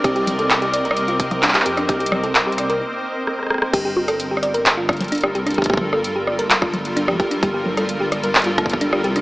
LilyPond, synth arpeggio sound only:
\new Staff \with { instrumentName = "Synth arpeggio sound" } { \time 4/4 \key g \minor \tempo 4 = 130 g'16 g'16 r16 a'16 r16 g'16 d''16 bes'16 r16 f'16 r8 d'16 g'16 g'16 d'16 | g'16 g'16 r16 a'16 r16 g'16 d''16 bes'16 r2 | g'16 g'16 r16 a'16 r16 g'16 d''16 bes'16 r16 f'16 r8 d'16 g'16 g'16 d'16 | g'16 g'16 r16 a'16 r16 g'16 d''16 bes'16 r16 f'16 r8 d'16 g'16 g'16 d'16 |
g'16 g'16 r16 a'16 r16 g'16 d''16 bes'16 r16 f'16 r8 d'16 g'16 g'16 d'16 | }